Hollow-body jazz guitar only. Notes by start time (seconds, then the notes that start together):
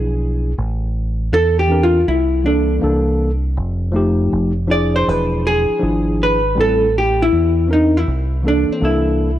1.34 A4
1.59 G4
1.83 F4
2.08 E4
2.46 D4
4.71 D5
4.96 C5
5.09 B4
5.47 G#4
6.23 B4
6.61 A4
6.98 G4
7.22 E4
7.73 D#4
7.97 E4
8.48 D4
8.72 C4
8.85 E4